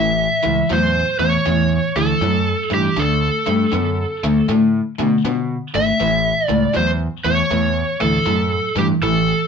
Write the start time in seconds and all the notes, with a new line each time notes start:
Already playing: A1 A2 E3 E5
0.43 C#2 A2 E3
0.69 E2 A2 F#3 C5
1.19 E2 A2 E3 C#5
1.46 E2 A2 E3
1.96 D2 A2 E3 A4
2.21 F#2 A2 F#3
2.70 G2 A2 E3 G4
2.96 D2 D3 A3 A4
3.46 G2 D3 A3
3.72 F#2 D3 B3
4.24 D2 D3 A3
4.48 A2 D3 A3
4.98 B2 D3 A3
5.25 B2 D3 B3
5.74 G#1 D3 A3 E5
6.00 A1 A2 E3
6.47 C#2 A2 E3 D5
6.74 E2 A2 F#3 C5
7.24 E2 A2 E3 C#5
7.50 E2 A2 E3
8.00 D2 A2 E3 A4
8.26 F#2 A2 F#3
8.76 G2 A2 E3 G4
9.02 A1 A2 E3 A4